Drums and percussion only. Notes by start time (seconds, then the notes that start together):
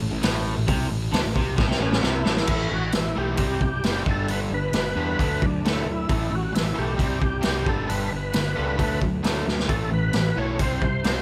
0.23 snare, open hi-hat
0.68 kick, open hi-hat
1.13 snare, open hi-hat
1.36 kick
1.58 kick, snare
1.71 snare
1.93 snare
2.03 snare
2.25 snare
2.37 snare
2.47 kick, crash
2.92 snare, open hi-hat
3.37 kick, open hi-hat
3.61 kick
3.84 snare, open hi-hat
4.06 kick
4.28 open hi-hat
4.73 snare, open hi-hat
5.19 kick, open hi-hat
5.42 kick
5.65 snare, open hi-hat
6.09 kick, open hi-hat
6.55 snare, open hi-hat
6.99 kick, open hi-hat
7.22 kick
7.43 snare, open hi-hat
7.66 kick
7.89 open hi-hat
8.33 snare, open hi-hat
8.79 kick, open hi-hat
9.02 kick
9.24 snare, open hi-hat
9.48 snare
9.59 snare
9.69 kick, open hi-hat
10.13 snare, open hi-hat
10.59 kick, open hi-hat
10.82 kick
11.04 snare, open hi-hat